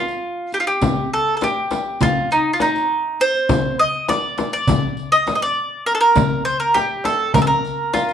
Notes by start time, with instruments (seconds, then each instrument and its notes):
Already playing: mandolin F4
0.08 riq, darbuka ka
0.52 mandolin G4, riq, darbuka ka
0.60 mandolin F4
0.67 mandolin G4, riq, darbuka ka
0.82 riq, frame drum, darbuka dum
1.13 mandolin A4, darbuka ka
1.37 mandolin A4
1.41 mandolin G4, riq, darbuka tek, frame drum
1.71 riq, darbuka tek, frame drum
2.01 mandolin F4, riq, darbuka dum, frame drum
2.31 mandolin D#4, riq, darbuka ka
2.53 mandolin F4
2.60 mandolin D#4, riq, darbuka tek, frame drum
2.75 riq, darbuka ka
3.20 mandolin C5, riq, darbuka ka
3.34 riq, darbuka ka
3.49 riq, frame drum, darbuka dum
3.79 mandolin D#5, darbuka ka
4.08 mandolin D5, riq, darbuka tek, frame drum
4.38 riq, darbuka tek, frame drum
4.53 mandolin D5
4.67 riq, darbuka dum, frame drum
4.97 riq, darbuka ka
5.12 mandolin D#5
5.27 riq, darbuka tek, frame drum
5.35 mandolin D#5
5.41 mandolin D5, riq, darbuka ka
5.86 mandolin A#4, riq, darbuka ka
5.95 mandolin A4
6.01 mandolin A#4, riq, darbuka ka
6.15 riq, frame drum, darbuka dum
6.45 mandolin C5, riq, darbuka ka
6.60 mandolin A#4
6.74 mandolin G4, riq, darbuka tek, frame drum
7.04 mandolin A4, riq, darbuka tek, frame drum
7.34 mandolin A#4, riq, darbuka dum, frame drum
7.42 mandolin A4
7.47 mandolin A#4
7.64 riq, darbuka ka
7.93 mandolin F4, riq, darbuka tek, frame drum
8.08 riq, darbuka ka